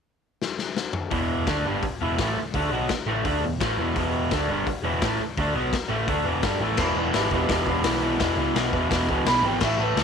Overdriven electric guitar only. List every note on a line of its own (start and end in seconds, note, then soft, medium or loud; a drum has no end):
1.11 1.46 E2 medium
1.11 1.47 B2 medium
1.11 1.47 E3 loud
1.47 1.64 D3 medium
1.47 1.65 A3 medium
1.47 1.65 D4 loud
1.65 1.82 G2 medium
1.65 1.83 D3 medium
1.65 1.83 G3 medium
1.83 muted overdriven electric guitar stroke medium
2.01 2.18 E2 loud
2.01 2.18 B2 medium
2.01 2.19 E3 medium
2.19 2.36 A2 medium
2.19 2.36 E3 medium
2.19 2.37 A3 medium
2.37 muted overdriven electric guitar stroke medium
2.55 2.71 D3 medium
2.55 2.72 A3 loud
2.55 2.72 D4 loud
2.72 2.89 B2 medium
2.72 2.89 F#3 medium
2.72 2.90 B3 medium
2.90 muted overdriven electric guitar stroke medium
3.07 3.24 A2 loud
3.07 3.25 E3 medium
3.07 3.25 A3 loud
3.25 3.42 D3 medium
3.25 3.43 A3 medium
3.25 3.43 D4 loud
3.45 3.58 E2 medium
3.45 3.58 B2 medium
3.60 3.77 A2 medium
3.60 3.78 E3 medium
3.60 3.79 A3 loud
3.79 3.95 E2 medium
3.79 3.96 B2 medium
3.79 3.96 E3 loud
3.96 4.31 E2 medium
3.96 4.31 B2 medium
3.96 4.32 E3 loud
4.32 4.49 D3 medium
4.32 4.49 A3 medium
4.32 4.50 D4 medium
4.49 4.66 G2 medium
4.49 4.67 D3 loud
4.49 4.67 G3 loud
4.67 muted overdriven electric guitar stroke medium
4.84 5.01 E2 medium
4.84 5.02 B2 loud
4.84 5.02 E3 loud
5.03 5.20 A2 medium
5.03 5.20 E3 medium
5.03 5.20 A3 medium
5.21 muted overdriven electric guitar stroke medium
5.38 5.54 D3 medium
5.38 5.55 A3 medium
5.38 5.56 D4 loud
5.54 5.72 B2 medium
5.54 5.72 F#3 medium
5.54 5.73 B3 loud
5.73 muted overdriven electric guitar stroke medium
5.88 6.07 A2 medium
5.88 6.07 E3 medium
5.88 6.08 A3 medium
6.07 6.25 D3 medium
6.07 6.26 A3 loud
6.07 6.26 D4 loud
6.25 6.42 E2 medium
6.25 6.43 B2 medium
6.25 6.43 E3 loud
6.43 6.61 G2 medium
6.43 6.61 D3 medium
6.43 6.61 G3 medium
6.61 6.78 A2 medium
6.61 6.79 E3 medium
6.61 6.79 A3 medium
6.79 6.96 E2 medium
6.79 6.97 B2 medium
6.79 6.98 E3 loud
6.97 7.14 E2 medium
6.97 7.13 B2 medium
6.97 7.15 E3 medium
7.14 7.32 E2 medium
7.14 7.32 B2 medium
7.14 7.34 E3 loud
7.32 7.49 E2 loud
7.32 7.50 B2 loud
7.32 7.52 E3 loud
7.50 7.67 E2 medium
7.50 7.68 B2 medium
7.50 7.69 E3 medium
7.68 7.85 E2 medium
7.68 7.86 B2 loud
7.68 7.87 E3 loud
7.86 8.01 E2 medium
7.86 8.02 B2 medium
7.86 8.03 E3 loud
8.02 8.19 E2 medium
8.02 8.20 B2 loud
8.02 8.21 E3 loud
8.20 8.36 E2 loud
8.20 8.37 B2 medium
8.20 8.39 E3 loud
8.37 8.54 E2 medium
8.37 8.55 B2 medium
8.37 8.56 E3 medium
8.55 8.72 E2 medium
8.55 8.73 B2 loud
8.55 8.75 E3 loud
8.73 8.88 E2 loud
8.73 8.89 B2 loud
8.73 8.91 E3 loud
8.89 9.08 E2 medium
8.89 9.09 B2 medium
8.89 9.11 E3 medium
9.09 9.25 E2 medium
9.09 9.26 B2 medium
9.09 9.28 E3 medium
9.26 9.42 E2 loud
9.26 9.43 B2 loud
9.26 9.45 E3 loud
9.43 9.60 E2 medium
9.43 9.60 B2 medium
9.43 9.62 E3 loud
9.61 9.79 A2 loud
9.61 9.80 E3 medium
9.61 9.81 A3 loud
9.79 9.96 A2 medium
9.79 9.97 E3 medium
9.79 9.98 A3 medium
9.96 10.04 A2 medium
9.96 10.04 E3 medium
9.96 10.04 A3 loud